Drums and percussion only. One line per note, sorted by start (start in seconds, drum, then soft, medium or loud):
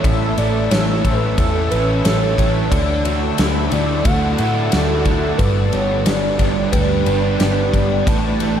0.04 kick loud
0.04 ride medium
0.38 ride medium
0.71 snare loud
0.71 ride medium
1.05 kick medium
1.05 ride medium
1.38 kick loud
1.38 ride medium
1.71 ride medium
2.05 snare loud
2.05 ride medium
2.38 kick medium
2.38 ride medium
2.72 kick medium
2.72 ride medium
3.05 ride medium
3.38 snare loud
3.38 ride medium
3.71 ride medium
4.05 kick loud
4.05 ride medium
4.38 ride medium
4.72 snare loud
4.72 ride medium
5.05 kick medium
5.05 ride medium
5.39 kick loud
5.39 ride medium
5.73 ride medium
6.06 snare loud
6.06 ride medium
6.39 kick medium
6.39 ride medium
6.73 kick medium
6.73 ride medium
7.06 ride medium
7.40 snare loud
7.40 ride medium
7.74 kick medium
7.74 ride medium
8.07 kick loud
8.07 ride medium
8.40 ride medium